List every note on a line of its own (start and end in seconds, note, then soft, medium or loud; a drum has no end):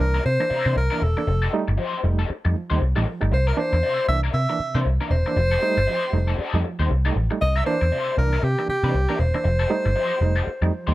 0.00 0.19 C2 medium
0.00 0.14 E3 medium
0.00 0.13 A#3 medium
0.00 0.13 D4 medium
0.00 0.25 A#4 loud
0.00 muted overdriven electric guitar stroke soft
0.14 0.19 A#3 soft
0.14 0.19 D4 soft
0.14 0.23 D4 medium
0.14 0.24 E4 medium
0.14 0.24 A#4 medium
0.24 0.37 C3 loud
0.24 0.73 C5 loud
0.24 muted overdriven electric guitar stroke soft
0.40 0.50 E3 medium
0.40 0.50 A#3 medium
0.40 0.50 D4 medium
0.40 muted overdriven electric guitar stroke soft
0.50 0.65 C3 medium
0.50 0.66 D4 medium
0.50 0.65 E4 medium
0.50 0.65 A#4 medium
0.50 muted picked electric bass stroke soft
0.65 0.74 C3 medium
0.65 0.76 E3 medium
0.65 0.76 A#3 medium
0.65 0.76 D4 medium
0.65 0.74 D4 soft
0.65 0.75 E4 medium
0.65 0.76 C5 medium
0.75 0.88 C2 medium
0.75 1.04 A#4 medium
0.75 muted overdriven electric guitar stroke medium
0.91 1.01 E3 medium
0.91 1.02 A#3 medium
0.91 1.02 D4 medium
0.91 1.00 D4 medium
0.91 1.01 E4 medium
0.91 1.01 A#4 medium
1.01 1.13 E1 medium
1.01 1.17 C3 medium
1.01 1.54 A4 medium
1.01 muted overdriven electric guitar stroke soft
1.17 1.27 E3 medium
1.17 1.27 A#3 medium
1.17 1.27 D4 medium
1.17 muted overdriven electric guitar stroke soft
1.27 1.47 F1 loud
1.27 muted overdriven electric guitar stroke soft
1.42 1.51 D#4 medium
1.42 1.52 G4 medium
1.42 1.53 A4 medium
1.53 1.68 G3 loud
1.53 1.67 A3 medium
1.53 1.67 D#4 loud
1.53 muted overdriven electric guitar stroke soft
1.68 1.76 G1 medium
1.68 1.73 A3 soft
1.68 1.73 D#4 soft
1.68 muted overdriven electric guitar stroke medium
1.78 1.93 F3 medium
1.78 1.98 D#4 medium
1.78 1.99 G4 medium
1.78 1.99 C5 loud
2.04 2.23 F1 medium
2.04 2.19 G3 medium
2.04 2.18 A3 medium
2.04 2.18 D#4 medium
2.04 muted overdriven electric guitar stroke soft
2.19 2.24 A3 soft
2.19 2.24 D#4 soft
2.19 2.28 D#4 medium
2.19 2.29 G4 medium
2.19 2.29 A4 medium
2.29 muted overdriven electric guitar stroke soft
2.29 muted picked electric bass stroke medium
2.44 2.53 F2 loud
2.44 2.55 G3 medium
2.44 2.55 A3 medium
2.44 2.55 D#4 medium
2.44 muted overdriven electric guitar stroke soft
2.55 2.70 F3 medium
2.70 2.79 D#2 medium
2.70 2.80 G3 medium
2.70 2.81 A3 medium
2.70 2.81 D#4 medium
2.70 2.79 D#4 medium
2.70 2.80 G4 medium
2.70 2.81 C5 medium
2.80 2.93 C2 loud
2.80 muted overdriven electric guitar stroke medium
2.96 3.04 A1 medium
2.96 3.06 G3 medium
2.96 3.06 A3 medium
2.96 3.06 D#4 medium
2.96 3.05 D#4 medium
2.96 3.06 G4 medium
2.96 3.06 A4 medium
3.06 muted overdriven electric guitar stroke soft
3.21 3.30 G1 medium
3.21 3.31 G3 medium
3.21 3.31 A3 medium
3.21 3.32 D#4 medium
3.21 muted overdriven electric guitar stroke medium
3.31 3.51 C2 loud
3.31 3.47 C3 medium
3.31 3.50 C5 medium
3.31 muted overdriven electric guitar stroke soft
3.47 3.56 D4 medium
3.47 3.57 E4 medium
3.47 3.58 A#4 medium
3.47 3.60 A#4 medium
3.57 3.72 E3 loud
3.57 3.71 A#3 medium
3.57 3.71 D4 loud
3.57 4.08 C5 loud
3.57 muted overdriven electric guitar stroke soft
3.73 3.81 E2 loud
3.73 3.77 A#3 soft
3.73 3.77 D4 soft
3.73 muted overdriven electric guitar stroke medium
3.83 3.98 C3 medium
3.83 4.03 D4 medium
3.83 4.04 E4 loud
3.83 4.04 C5 medium
4.08 4.28 C2 medium
4.08 4.23 E3 medium
4.08 4.23 A#3 medium
4.08 4.23 D4 medium
4.08 4.20 E5 loud
4.08 muted overdriven electric guitar stroke soft
4.24 4.33 D4 medium
4.24 4.34 E4 medium
4.24 4.34 A#4 medium
4.34 4.45 C3 loud
4.34 4.82 E5 loud
4.34 muted overdriven electric guitar stroke soft
4.49 4.60 E3 medium
4.49 4.60 A#3 medium
4.49 4.60 D4 medium
4.49 muted overdriven electric guitar stroke medium
4.60 muted picked electric bass stroke soft
4.75 4.83 C3 loud
4.75 4.85 E3 medium
4.75 4.85 A#3 medium
4.75 4.85 D4 medium
4.75 4.84 D4 medium
4.75 4.85 E4 medium
4.75 4.86 C5 medium
4.86 4.97 C2 loud
4.86 muted overdriven electric guitar stroke soft
5.01 5.11 E3 medium
5.01 5.11 A#3 medium
5.01 5.11 D4 medium
5.01 5.10 D4 medium
5.01 5.10 E4 medium
5.01 5.11 A#4 medium
5.11 5.22 E1 medium
5.11 5.26 C3 medium
5.11 6.60 C5 loud
5.11 muted overdriven electric guitar stroke soft
5.26 5.37 E3 medium
5.26 5.37 A#3 medium
5.26 5.37 D4 medium
5.26 muted overdriven electric guitar stroke medium
5.36 5.56 F1 loud
5.36 5.52 F3 medium
5.36 muted overdriven electric guitar stroke soft
5.51 5.61 D#4 medium
5.51 5.61 G4 medium
5.51 5.62 A4 medium
5.62 5.77 G3 medium
5.62 5.77 A3 medium
5.62 5.77 D#4 loud
5.62 muted overdriven electric guitar stroke soft
5.78 5.85 G1 medium
5.78 5.82 A3 soft
5.78 5.82 D#4 soft
5.78 muted overdriven electric guitar stroke medium
5.87 6.03 F3 medium
5.87 6.08 D#4 medium
5.87 6.08 G4 loud
5.87 6.08 C5 loud
6.13 6.32 F1 medium
6.13 6.28 G3 medium
6.13 6.28 A3 medium
6.13 6.28 D#4 medium
6.13 muted overdriven electric guitar stroke soft
6.28 6.33 A3 soft
6.28 6.33 D#4 soft
6.28 6.37 D#4 medium
6.28 6.38 G4 medium
6.28 6.39 A4 medium
6.38 6.60 D#4 medium
6.38 6.60 G4 medium
6.38 6.60 A4 medium
6.38 muted picked electric bass stroke soft
6.54 6.62 F2 loud
6.54 6.64 G3 medium
6.54 6.64 A3 medium
6.54 6.64 D#4 medium
6.64 6.79 F3 medium
6.64 muted overdriven electric guitar stroke soft
6.79 6.87 D#2 loud
6.79 6.90 G3 medium
6.79 6.90 A3 medium
6.79 6.90 D#4 medium
6.79 6.89 D#4 medium
6.79 6.89 G4 medium
6.79 6.90 C5 medium
6.90 7.09 C2 medium
6.90 muted overdriven electric guitar stroke soft
7.05 7.15 G3 medium
7.05 7.15 A3 medium
7.05 7.16 D#4 medium
7.05 7.14 D#4 medium
7.05 7.15 G4 medium
7.05 7.15 A4 medium
7.15 7.27 A1 loud
7.15 muted overdriven electric guitar stroke soft
7.31 7.41 G3 medium
7.31 7.41 A3 medium
7.31 7.41 D#4 medium
7.31 muted overdriven electric guitar stroke soft
7.41 7.61 C2 loud
7.41 7.56 C3 medium
7.41 7.58 D#5 loud
7.41 muted overdriven electric guitar stroke soft
7.56 7.65 D4 medium
7.56 7.66 E4 medium
7.56 7.66 A#4 medium
7.56 7.66 E5 medium
7.66 7.81 E3 loud
7.66 7.81 A#3 medium
7.66 7.81 D4 loud
7.66 8.14 C5 loud
7.66 muted overdriven electric guitar stroke soft
7.81 7.90 E2 medium
7.81 muted overdriven electric guitar stroke medium
7.92 8.07 C3 medium
7.92 8.12 D4 loud
7.92 8.13 E4 loud
7.92 8.13 C5 loud
8.17 8.37 C2 loud
8.17 8.32 E3 medium
8.17 8.32 A#3 medium
8.17 8.32 D4 medium
8.17 8.45 A#4 medium
8.17 muted overdriven electric guitar stroke soft
8.33 8.37 A#3 soft
8.33 8.37 D4 soft
8.33 8.42 D4 medium
8.33 8.42 E4 medium
8.33 8.43 A#4 medium
8.43 8.54 C3 loud
8.43 8.69 G4 loud
8.43 muted overdriven electric guitar stroke soft
8.58 8.68 E3 medium
8.58 8.68 A#3 medium
8.58 8.69 D4 medium
8.58 muted overdriven electric guitar stroke medium
8.69 8.83 C3 medium
8.69 9.21 G4 medium
8.69 muted picked electric bass stroke medium
8.84 8.91 C3 loud
8.84 8.94 E3 medium
8.84 8.94 A#3 medium
8.84 8.94 D4 medium
8.84 8.93 D4 medium
8.84 8.94 E4 medium
8.84 8.95 C5 medium
8.94 9.06 C2 medium
8.94 muted overdriven electric guitar stroke soft
9.09 9.19 E3 medium
9.09 9.19 A#3 medium
9.09 9.20 D4 medium
9.09 9.18 D4 medium
9.09 9.18 E4 medium
9.09 9.19 A#4 loud
9.19 9.31 E1 medium
9.19 9.34 C3 medium
9.19 10.94 C5 medium
9.19 muted overdriven electric guitar stroke soft
9.34 9.44 E3 medium
9.34 9.45 A#3 medium
9.34 9.45 D4 medium
9.34 muted overdriven electric guitar stroke soft
9.44 9.64 F1 loud
9.44 9.60 F3 medium
9.44 muted overdriven electric guitar stroke soft
9.59 9.69 D#4 medium
9.59 9.69 G4 medium
9.59 9.70 A4 loud
9.70 9.85 G3 medium
9.70 9.84 A3 medium
9.70 9.85 D#4 loud
9.70 muted overdriven electric guitar stroke soft
9.86 9.94 G1 loud
9.86 9.90 A3 soft
9.86 9.90 D#4 soft
9.86 muted overdriven electric guitar stroke soft
9.96 10.11 F3 medium
9.96 10.16 D#4 medium
9.96 10.16 G4 medium
9.96 10.17 C5 medium
10.21 10.40 F1 medium
10.21 10.36 G3 medium
10.21 10.36 A3 medium
10.21 10.36 D#4 medium
10.21 muted overdriven electric guitar stroke soft
10.36 10.41 A3 soft
10.36 10.41 D#4 soft
10.36 10.45 D#4 medium
10.36 10.46 G4 medium
10.36 10.47 A4 medium
10.46 muted overdriven electric guitar stroke soft
10.46 muted picked electric bass stroke soft
10.62 10.70 F2 medium
10.62 10.72 G3 medium
10.62 10.72 A3 medium
10.62 10.72 D#4 medium
10.62 muted overdriven electric guitar stroke soft
10.87 10.94 D#2 medium
10.87 10.94 G3 medium
10.87 10.94 A3 medium
10.87 10.94 D#4 medium
10.87 10.94 G4 medium
10.87 10.94 C5 medium